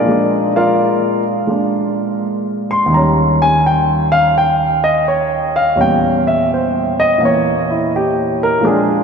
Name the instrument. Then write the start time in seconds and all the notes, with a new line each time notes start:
grand piano
Already playing: D4 G#4 A#4 D5
0.01 A#2 F3
0.08 G#3 D4
0.56 F4 A#4 D5 F5
1.47 G#3 A#3 D4
2.71 C6
2.86 D#2 D#3
2.93 G3 A#5
2.97 C#4
3.42 G#5
3.66 G5
4.12 F5
4.38 G5
4.84 D#5
5.08 C#5
5.56 F5
5.75 E2 A#2 G3 C#4
5.81 G5
6.27 E5
6.54 C5
7.00 D#5
7.18 A#2 E3 A#3
7.25 C#5
7.71 E4
7.96 G4
8.43 A#4
8.60 A#2 F3 G#3
8.65 D4 G#4